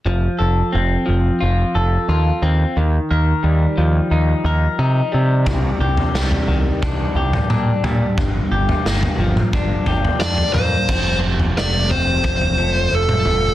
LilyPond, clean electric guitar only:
\new Staff \with { instrumentName = "Clean electric guitar" } { \time 4/4 \key f \mixolydian \tempo 4 = 89 f8 a'8 c'8 f8 f'8 a'8 f'8 c'8 | ees8 bes'8 g8 f8 ees'8 bes'8 ees'8 g8 | c8 g'8 g8 ees8 d'8 g'8 d'8 g8 | g,8 g'8 bes8 f8 d'8 g'8 d'8 bes8 |
f,8 c8 a8 c'8 f8 a8 f8 a8 | }